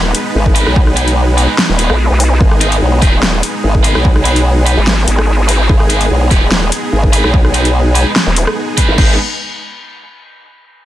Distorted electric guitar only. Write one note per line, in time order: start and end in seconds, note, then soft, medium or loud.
0.55 0.71 D#4 medium
0.55 0.71 G#4 medium
0.55 0.71 B4 loud
0.96 1.07 D#4 medium
0.96 1.07 G#4 medium
0.96 1.07 B4 medium
1.38 1.48 D#4 medium
1.38 1.48 G#4 medium
1.38 1.48 B4 loud
1.79 1.89 D#4 medium
1.79 1.89 G#4 medium
1.79 1.89 B4 loud
2.61 2.71 D#4 medium
2.61 2.71 G#4 medium
2.61 2.71 B4 medium
3.02 3.12 D#4 medium
3.02 3.12 G#4 medium
3.02 3.12 B4 loud
3.84 4.00 D#4 medium
3.84 4.00 G#4 medium
3.84 4.00 B4 loud
4.25 4.35 D#4 medium
4.25 4.35 G#4 medium
4.25 4.35 B4 loud
4.66 4.77 D#4 medium
4.66 4.77 G#4 medium
4.66 4.77 B4 loud
5.49 5.64 D#4 medium
5.49 5.64 G#4 medium
5.49 5.64 B4 loud
5.90 6.00 D#4 medium
5.90 6.00 G#4 medium
5.90 6.00 B4 medium
6.31 6.41 D#4 medium
6.31 6.41 G#4 medium
6.31 6.41 B4 loud
7.13 7.29 D#4 medium
7.13 7.29 G#4 medium
7.13 7.29 B4 medium
7.54 7.64 D#4 medium
7.54 7.64 G#4 medium
7.54 7.64 B4 medium
7.95 8.05 D#4 medium
7.95 8.05 G#4 medium
7.95 8.05 B4 loud
8.77 8.93 D#4 medium
8.77 8.93 G#4 medium
8.77 8.93 B4 loud
8.98 9.14 D#4 medium
8.98 9.14 G#4 medium
8.98 9.14 B4 medium